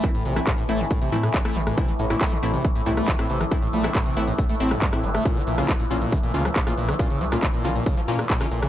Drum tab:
HH |xxoxxxoxxxoxxxox|xxoxxxoxxxoxxxox|xxoxxxoxxxoxxxox|xxoxxxoxxxoxxxox|
SH |xxxxxxxxxxxxxxxx|xxxxxxxxxxxxxxxx|xxxxxxxxxxxxxxxx|xxxxxxxxxxxxxxxx|
CP |----x-------x---|----x-------x---|----x-------x---|----x-------x---|
SD |---r-------r-r-r|---r-------r-r-r|---r-------r-r-r|---r-------r-r-r|
BD |o---o---o---o---|o---o---o---o---|o---o---o---o---|o---o---o---o---|

HH |xxoxxxoxxxoxxxox|
SH |xxxxxxxxxxxxxxxx|
CP |----x-------x---|
SD |---r-------r-r-r|
BD |o---o---o---o---|